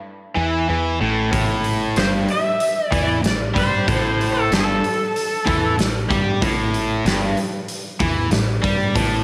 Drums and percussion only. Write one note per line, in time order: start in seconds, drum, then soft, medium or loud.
1.33 kick loud
1.33 open hi-hat medium
1.64 open hi-hat soft
1.96 snare loud
1.96 open hi-hat medium
2.29 open hi-hat soft
2.60 open hi-hat medium
2.92 kick medium
2.92 open hi-hat soft
3.24 snare medium
3.24 open hi-hat medium
3.56 kick medium
3.56 open hi-hat soft
3.88 kick loud
3.88 open hi-hat medium
4.21 open hi-hat soft
4.52 snare loud
4.52 open hi-hat medium
4.84 open hi-hat soft
5.16 open hi-hat medium
5.47 kick medium
5.47 open hi-hat soft
5.79 snare medium
5.79 open hi-hat medium
6.11 kick medium
6.11 open hi-hat soft
6.42 kick medium
6.42 open hi-hat medium
6.74 open hi-hat soft
7.06 snare loud
7.06 open hi-hat medium
7.37 open hi-hat soft
7.68 open hi-hat medium
8.00 kick medium
8.00 open hi-hat soft
8.31 snare loud
8.31 open hi-hat medium
8.64 kick medium
8.64 open hi-hat soft
8.96 kick loud
8.96 open hi-hat medium